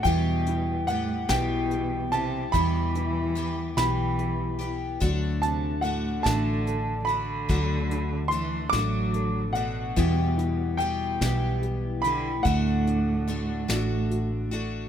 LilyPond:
<<
  \new Staff \with { instrumentName = "Upright piano" } { \time 6/8 \key d \major \tempo 4. = 48 g''4 fis''8 g''4 a''8 | b''4. b''4 r8 | r8 a''8 fis''8 a''4 b''8~ | b''4 c'''8 d'''4 fis''8~ |
fis''4 g''4 r8 b''8 | fis''2~ fis''8 r8 | }
  \new Staff \with { instrumentName = "Felt piano" } { \time 6/8 \key d \major e8 e'4 <b e' g'>8 g'4 | e8 e'4 <b e' g'>8 g'4 | fis8 d'4 <a d' a'>8 a'4 | fis8 d'4 <a d' a'>8 a'4 |
e8 e'4 <b e' g'>8 g'4 | a8 d'4 <a d' fis'>8 fis'4 | }
  \new Staff \with { instrumentName = "Twelve-string acoustic guitar" } { \time 6/8 \key d \major <e, b, e g b g'>4 <e g b g'>8 <e, b, e g b g'>4 <e g b g'>8 | <e, b, e g b g'>4 <e g b g'>8 <e, b, e g b g'>4 <e g b g'>8 | <d a d' fis'>4 <d a d' fis'>8 <d a d' fis'>4 <a d' fis'>8 | <d a d' fis'>4 <d a d' fis'>8 <d a d' fis'>4 <a d' fis'>8 |
<e, b, e g b g'>4 <e g b g'>8 <e, b, e g b g'>4 <e g b g'>8 | <d a d' fis'>4 <d a d' fis'>8 <d a d' fis'>4 <a d' fis'>8 | }
  \new Staff \with { instrumentName = "Cello" } { \clef bass \time 6/8 \key d \major b,4 a,8 b,4 c8 | e4. e4 r8 | r8 c8 a,8 d4 d8~ | d4 e8 fis4 b,8~ |
b,4 b,4 r8 d8 | a,2~ a,8 r8 | }
  \new Staff \with { instrumentName = "Fingered electric bass" } { \clef bass \time 6/8 \key d \major e,4. b,,4. | e,4. b,,4. | d,4. a,,4. | d,4. a,,4. |
e,4. b,,4. | d,4. a,,4. | }
  \new DrumStaff \with { instrumentName = "Drums" } \drummode { \time 6/8 <hh bd>8 hh8 hh8 <hh bd sn>8 hh8 hh8 | <hh bd>8 hh8 hh8 <hh sn>8 hh8 hh8 | <hh bd>8 hh8 hh8 <hh bd sn>8 hh8 hh8 | <hh bd>8 hh8 hh8 <hh bd sn>8 hh8 hh8 |
<hh bd>8 hh8 hh8 <hh bd sn>8 hh8 hh8 | <hh bd>8 hh8 hh8 <hh sn>8 hh8 hh8 | }
>>